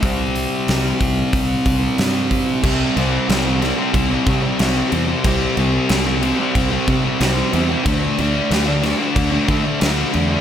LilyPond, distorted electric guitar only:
\new Staff \with { instrumentName = "Distorted electric guitar" } { \time 4/4 \key d \mixolydian \tempo 4 = 92 <c g c'>1 | <c g c'>8 <c g c'>8 <c g c'>16 <g c'>16 <c g c'>16 <g c'>8 <g c'>16 <c g c'>16 <g c'>16 <c g c'>8 <c g c'>16 <g c'>16 | <c g c'>8 <c g c'>8 <c g c'>16 <g c'>16 <c g c'>16 <g c'>8 <g c'>16 <c g c'>16 <g c'>16 <c g c'>8 <c g c'>16 <g c'>16 | <d a d'>8 <d a d'>8 <d a d'>16 <a d'>16 <d a d'>16 <a d'>8 <a d'>16 <d a d'>16 <a d'>16 <d a d'>8 <d a d'>16 <a d'>16 | }